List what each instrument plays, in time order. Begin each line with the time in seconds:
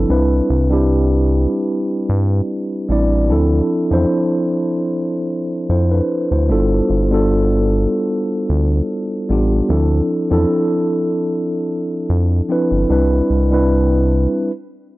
Already playing: tine electric piano F3 C4 D4 E4 A4
0.08 analog synth bass C2, tine electric piano G3 C4 D4 E4 B4
0.50 analog synth bass C2
0.70 tine electric piano G3 C4 D4 E4 G4
2.09 analog synth bass G2
2.89 analog synth bass A1, tine electric piano G3 C4 D4 E4 D5
3.29 analog synth bass D2, tine electric piano F3 C4 D4 E4 A4
3.91 analog synth bass E2, tine electric piano F3 C4 D4 E4 C5
5.69 analog synth bass F2, tine electric piano E4 C5
5.91 tine electric piano D4 B4
6.31 analog synth bass D2, tine electric piano E4 C5
6.49 analog synth bass G1, tine electric piano G3 B3 D4 F4 A4
6.90 analog synth bass G1
7.11 tine electric piano G3 B3 D4 F4 A4
8.49 analog synth bass D2
9.29 analog synth bass A1, tine electric piano G3 B3 D4 F4 G4
9.68 analog synth bass D2, tine electric piano F3 C4 D4 E4 A4
10.30 analog synth bass E2, tine electric piano F3 C4 D4 E4 A4
12.10 analog synth bass F2
12.49 tine electric piano F3 C4 D4 E4 B4
12.71 analog synth bass G1
12.89 analog synth bass C2, tine electric piano G3 C4 D4 E4 B4
13.30 analog synth bass C2
13.51 tine electric piano G3 C4 D4 E4 B4